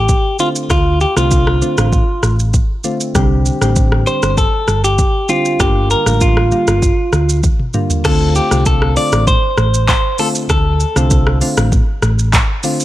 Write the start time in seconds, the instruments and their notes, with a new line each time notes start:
Already playing: fingered electric bass A1, clean electric guitar G4
0.09 kick, shaker
0.39 synth keys D3 A3 C4 F4, clean electric guitar F4, shaker
0.56 shaker
0.70 fingered electric bass D2, clean electric guitar F4, kick, cross-stick, shaker
1.01 clean electric guitar G4, shaker
1.16 fingered electric bass C2, synth keys D3 A3 C4 F4, clean electric guitar F4, cross-stick, shaker
1.31 kick, shaker
1.47 cross-stick
1.62 synth keys D3 A3 C4 F4, shaker
1.78 fingered electric bass A1, cross-stick, shaker
1.93 kick, shaker
2.23 fingered electric bass A1, cross-stick, shaker
2.40 shaker
2.54 kick, shaker
2.84 synth keys D3 A3 C4 F4, shaker
3.01 shaker
3.15 fingered electric bass C2, synth keys D3 G3 C4 G4, kick, cross-stick, shaker
3.46 shaker
3.61 fingered electric bass A1, synth keys D3 G3 C4 G4, cross-stick, shaker
3.76 kick, shaker
3.92 cross-stick
4.07 synth keys D3 G3 C4 G4, clean electric guitar C5, shaker
4.23 fingered electric bass G1, cross-stick, shaker
4.37 clean electric guitar A4, kick, shaker
4.68 fingered electric bass G1, cross-stick, shaker
4.84 clean electric guitar G4, shaker
4.99 kick, shaker
5.29 synth keys D3 G3 C4 G4, clean electric guitar F4, shaker
5.45 shaker
5.60 fingered electric bass G1, synth keys D3 G3 A#3 F4, clean electric guitar G4, kick, cross-stick, shaker
5.90 clean electric guitar A#4, shaker
6.06 fingered electric bass A1, synth keys D3 G3 A#3 F4, cross-stick, shaker
6.21 clean electric guitar F4, kick, shaker
6.37 cross-stick
6.52 synth keys D3 G3 A#3 F4, shaker
6.67 fingered electric bass G1, cross-stick, shaker
6.82 kick, shaker
7.13 fingered electric bass D2, cross-stick, shaker
7.29 shaker
7.43 kick, high tom, shaker
7.60 mid tom
7.74 synth keys D3 G3 A#3 F4, mid tom, shaker
7.90 floor tom, shaker
8.05 fingered electric bass D2, synth keys D3 A3 C4 F4, clean electric guitar A4, kick, cross-stick, crash, shaker
8.35 clean electric guitar G4, shaker
8.51 fingered electric bass C2, synth keys D3 A3 C4 F4, cross-stick, shaker
8.66 clean electric guitar A4, kick, shaker
8.82 cross-stick
8.96 synth keys D3 A3 C4 F4, clean electric guitar D5, open hi-hat, shaker
9.12 fingered electric bass A1, cross-stick, shaker
9.27 clean electric guitar C5, kick, shaker
9.58 fingered electric bass A1, cross-stick, shaker
9.74 shaker
9.88 clean electric guitar C5, kick, clap, shaker
10.18 synth keys D3 A3 C4 F4, clean electric guitar A4, open hi-hat, shaker
10.35 shaker
10.50 fingered electric bass D2, clean electric guitar A4, kick, cross-stick, shaker
10.80 shaker
10.96 fingered electric bass C2, synth keys D3 A3 C4 F4, cross-stick, shaker
11.10 kick, shaker
11.27 cross-stick
11.41 synth keys D3 A3 C4 F4, open hi-hat, shaker
11.57 fingered electric bass A1, cross-stick, shaker
11.72 kick, shaker
12.02 fingered electric bass A1, cross-stick, shaker
12.19 shaker
12.33 kick, clap, shaker
12.63 synth keys D3 A3 C4 F4, open hi-hat, shaker
12.80 shaker